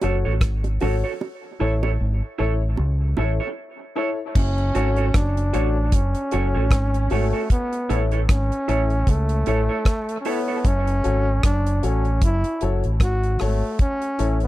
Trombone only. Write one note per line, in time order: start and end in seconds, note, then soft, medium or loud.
4.37 5.18 C#4 loud
5.16 5.96 D4 loud
5.95 7.14 C#4 loud
7.13 7.51 A3 medium
7.52 8.01 B3 loud
8.31 9.11 C#4 loud
9.09 10.20 A3 loud
10.21 10.29 C#4 medium
10.27 10.68 B3 loud
10.67 11.44 C#4 loud
11.45 11.86 D4 loud
11.85 12.23 C#4 medium
12.24 12.73 E4 loud
13.03 13.43 F#4 loud
13.42 13.80 A3 loud
13.81 14.38 C#4 loud
14.43 14.47 B3 loud